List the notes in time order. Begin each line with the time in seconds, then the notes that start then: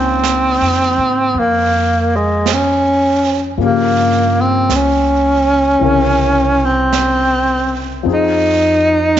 Already playing: C#2 C#3 D#3 A#3 C4 F4
0.23 brush sweep, snare, hi-hat pedal
0.61 F2
0.98 G#2
1.34 F2, brush sweep
1.39 A#3
2.16 G#3
2.46 brush sweep, snare, hi-hat pedal
2.53 C#4
3.57 G2 C#3 F3 A#3, brush sweep
3.63 A#3 G4
4.41 C4
4.69 C#2, brush sweep, snare, hi-hat pedal
4.76 C#4
5.79 C2 C3 C#3 E3, brush sweep
5.84 A#4
6.65 C4
6.93 brush sweep, snare, hi-hat pedal
8.03 F2 F3 C4 D#4, brush sweep
8.08 G#4
8.13 D#4
9.17 brush sweep, snare, hi-hat pedal